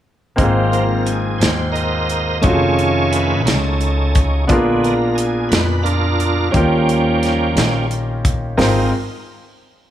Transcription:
0.36 upright bass G#1, grand piano G#2 A#3 C4 D#4 F4, tonewheel organ F3 A#3 C4, kick, closed hi-hat
0.40 grand piano G#4
0.72 tonewheel organ A#4, closed hi-hat
1.06 tonewheel organ G#4, closed hi-hat
1.38 upright bass D#2, tonewheel organ C5, closed hi-hat
1.43 snare
1.72 tonewheel organ A#4 C5 D#5, closed hi-hat
2.10 closed hi-hat
2.41 upright bass F1, tonewheel organ D#3 A3 C#4 F4 G#4 C#5, grand piano A3 C#4 D#4 F4, kick, closed hi-hat
2.46 grand piano F#4
2.53 grand piano G#4
2.79 closed hi-hat
3.11 tonewheel organ B4, closed hi-hat
3.46 upright bass C#2, tonewheel organ C#4 D#4 A4, snare, closed hi-hat
3.81 closed hi-hat
4.15 kick, closed hi-hat
4.47 upright bass A#1, grand piano A#2 B3 D4 F4, tonewheel organ D3 G#3 B3, kick, closed hi-hat
4.52 grand piano G#4 A#4
4.84 tonewheel organ A#4, closed hi-hat
5.15 tonewheel organ G#4, closed hi-hat
5.49 upright bass F2, tonewheel organ B4, snare, closed hi-hat
5.83 tonewheel organ D4 F4 A#4, closed hi-hat
6.20 closed hi-hat
6.50 upright bass D#2, grand piano D#3 C#4 D#4 F4, tonewheel organ F3 G3 A#3 C#4 G4, kick, closed hi-hat
6.56 grand piano G4 A#4
6.89 closed hi-hat
7.23 snare, closed hi-hat
7.54 upright bass A#1, tonewheel organ F3 G3 C#4, snare, closed hi-hat
7.91 closed hi-hat
8.25 kick, closed hi-hat
8.57 grand piano G#1 C4 D#4 F4 G#4 A#4, upright bass G#1, tonewheel organ G#3 C4 D#4 F4 A#4, snare, open hi-hat

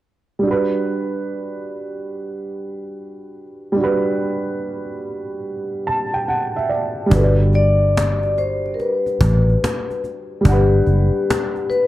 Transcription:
0.39 upright piano G3 D4
0.47 upright piano F#4 B4
3.72 upright piano G3
3.76 upright piano D4 F#4
3.83 upright piano B4
5.87 upright piano A5
6.14 upright piano G5
6.28 upright piano F#5
6.56 upright piano E5
6.69 upright piano D5
7.06 upright piano G3 D4
7.11 fingered electric bass G1, upright piano F#4, vibraphone B4, cajon bass
7.18 upright piano A4
7.24 upright piano D5
7.41 cajon slap
7.53 vibraphone D5, cajon slap
7.97 cajon slap
8.23 cajon slap
8.38 vibraphone C5, cajon slap
8.66 cajon slap
8.74 vibraphone A#4
8.79 vibraphone B4, cajon slap
9.06 cajon slap
9.21 fingered electric bass A1, cajon bass
9.50 cajon slap
9.64 cajon slap
9.91 cajon slap
10.04 cajon slap
10.41 upright piano G3 D4
10.45 fingered electric bass G1, vibraphone G4, upright piano F#5, cajon bass
10.52 upright piano B4
10.75 cajon slap
10.86 fingered electric bass F#1, cajon slap
11.30 cajon slap
11.56 cajon slap
11.70 vibraphone B4, cajon slap

